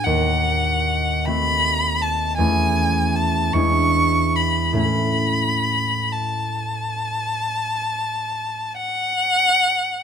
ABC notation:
X:1
M:12/8
L:1/8
Q:3/8=47
K:A
V:1 name="Violin"
f3 b2 a g2 a c'2 b | b3 a6 f3 |]
V:2 name="Harp"
[^D,,F]3 [A,^B,F]3 [E,,A,CE]3 [E,,G,=DE]3 | [A,,A,CE]12 |]